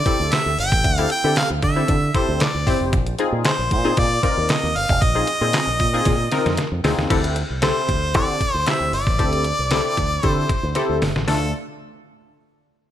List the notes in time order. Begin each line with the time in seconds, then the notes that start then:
Already playing: D5
0.06 C4 E4 G4 A4, kick, closed hi-hat
0.20 D2
0.32 E5, snare, clap, closed hi-hat
0.46 D2
0.58 G1 G5, open hi-hat
0.72 A1, kick
0.84 D2, kick, closed hi-hat
0.98 C4 E4 G4 A4, closed hi-hat
1.10 G5, closed hi-hat
1.24 D3 C4 E4 G4 A4
1.36 F5, snare, clap, closed hi-hat
1.50 D2
1.62 D3 E5, kick, closed hi-hat
1.76 C4 E4 G4 A4
1.88 D3, kick, closed hi-hat
2.14 C4 E4 G4 A4 C5, kick, closed hi-hat
2.28 D2
2.40 D5, snare, clap, closed hi-hat
2.55 D2
2.67 G1 C4 E4 G4 C5, kick, open hi-hat
2.81 F1
2.93 A#1, kick, closed hi-hat
3.07 closed hi-hat
3.19 C4 D#4 F4 G#4, closed hi-hat
3.32 A#2
3.45 C5, snare, clap, closed hi-hat
3.59 A#1
3.71 A#2 C5, kick, closed hi-hat
3.84 C4 D#4 F4 G#4
3.97 A#2 D5, kick, closed hi-hat
4.23 C4 D#4 F4 A#4 D5, kick, closed hi-hat
4.37 D#2
4.49 D#5, snare, clap, closed hi-hat
4.63 D#2
4.76 G1 F5, open hi-hat
4.89 F1, kick
5.02 A#1 D#5, kick, closed hi-hat
5.15 C4 D#4 F4 G#4
5.27 closed hi-hat
5.41 A#2 C4 D#4 F4 G#4
5.53 snare, clap, closed hi-hat
5.67 A#1
5.80 A#2, kick, closed hi-hat
5.93 C4 D#4 F4 G#4
6.05 A#2, kick, snare, closed hi-hat
6.32 C4 D#4 F4 A#4, snare, closed hi-hat
6.46 F2, snare, closed hi-hat
6.57 snare, closed hi-hat
6.72 F2
6.84 D2 C4 D#4 F4 G#4, snare, open hi-hat
6.98 D#2, snare
7.10 D2 C4 E4 G4 A4, kick, closed hi-hat, crash
7.24 closed hi-hat
7.36 closed hi-hat
7.50 C2
7.62 C4 E4 G4 A4 C5, snare, clap, closed hi-hat
7.89 D2, kick, closed hi-hat
8.14 D3 C4 E4 G4 A4 D5, kick, closed hi-hat
8.41 kick, closed hi-hat
8.54 D2 C5
8.66 C4 E4 G4 C5 E5, snare, clap, closed hi-hat
8.80 D2
8.93 G1 D5, open hi-hat
9.07 A1, kick
9.18 D2 C4 E4 G4 A4, kick, closed hi-hat
9.33 closed hi-hat
9.44 closed hi-hat
9.59 C2
9.71 C4 E4 G4 A4, snare, clap, closed hi-hat
9.97 D2, kick, closed hi-hat
10.23 D3 C4 E4 G4 A4 C5, kick, closed hi-hat
10.49 kick, closed hi-hat
10.63 D2
10.75 C4 E4 G4 A4, snare, closed hi-hat
10.90 D2
11.02 G1, snare, open hi-hat
11.16 A1, snare
11.27 D2 A3 D4 F4 A4, snare, open hi-hat